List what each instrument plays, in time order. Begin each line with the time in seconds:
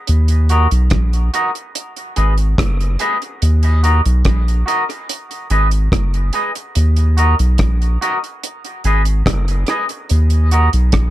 0.07 sub bass D#2, closed hi-hat
0.28 closed hi-hat
0.49 clean electric guitar F#4 A#4 D#5, closed hi-hat
0.71 sub bass B1, closed hi-hat
0.90 sub bass A#1, kick, cross-stick, closed hi-hat
1.13 closed hi-hat
1.34 clean electric guitar F#4 A#4 D#5, closed hi-hat
1.55 closed hi-hat
1.75 closed hi-hat
1.96 closed hi-hat
2.16 sub bass G#1, clean electric guitar G#4 B4 D#5, closed hi-hat
2.38 closed hi-hat
2.58 sub bass F#1, kick, cross-stick, closed hi-hat
2.81 closed hi-hat
2.99 clean electric guitar G#4 B4 D#5, closed hi-hat
3.22 closed hi-hat
3.42 sub bass D#2, closed hi-hat
3.63 closed hi-hat
3.83 clean electric guitar F#4 A#4 D#5, closed hi-hat
4.06 sub bass B1, closed hi-hat
4.25 sub bass A#1, kick, cross-stick, closed hi-hat
4.48 closed hi-hat
4.66 clean electric guitar F#4 A#4 D#5, closed hi-hat
4.90 closed hi-hat
5.09 closed hi-hat
5.31 closed hi-hat
5.50 sub bass G#1, clean electric guitar G#4 B4 D#5, closed hi-hat
5.71 closed hi-hat
5.92 sub bass F#1, kick, cross-stick, closed hi-hat
6.14 closed hi-hat
6.33 clean electric guitar G#4 B4 D#5, closed hi-hat
6.55 muted clean electric guitar stroke, closed hi-hat
6.75 sub bass D#2, closed hi-hat
6.96 closed hi-hat
7.17 clean electric guitar F#4 A#4 D#5, closed hi-hat
7.39 sub bass B1, closed hi-hat
7.58 sub bass A#1, kick, cross-stick, closed hi-hat
7.82 closed hi-hat
8.01 clean electric guitar F#4 A#4 D#5, closed hi-hat
8.24 closed hi-hat
8.43 closed hi-hat
8.65 closed hi-hat
8.84 sub bass G#1, clean electric guitar G#4 B4 D#5, closed hi-hat
9.05 closed hi-hat
9.26 sub bass F#1, kick, cross-stick, closed hi-hat
9.48 closed hi-hat
9.67 clean electric guitar G#4 B4 D#5, cross-stick, closed hi-hat
9.89 muted clean electric guitar stroke, closed hi-hat
10.09 sub bass D#2, closed hi-hat
10.30 closed hi-hat
10.51 clean electric guitar F#4 A#4 D#5, closed hi-hat
10.73 sub bass B1, closed hi-hat
10.92 sub bass A#1, kick, cross-stick, closed hi-hat